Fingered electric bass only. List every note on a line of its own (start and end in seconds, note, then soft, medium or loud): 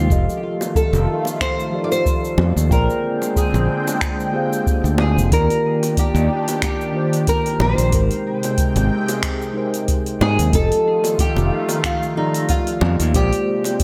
0.10 0.26 F1 loud
0.93 1.06 F1 loud
2.38 2.54 F2 medium
2.56 2.69 D#2 medium
2.71 2.86 A#1 loud
3.54 3.67 A#1 loud
4.84 5.18 D2 medium
5.16 5.29 F1 medium
5.32 5.47 D#2 loud
6.15 6.27 D#2 medium
7.60 7.76 A#1 medium
7.78 7.91 A#1 medium
7.93 8.08 G#1 medium
8.76 8.88 G#1 loud
10.21 10.37 G#2 loud
10.39 10.51 D#2 medium
10.53 10.69 F1 loud
11.36 11.49 F1 medium
12.82 12.97 F2 medium
13.00 13.12 D#2 medium
13.14 13.30 A#1 loud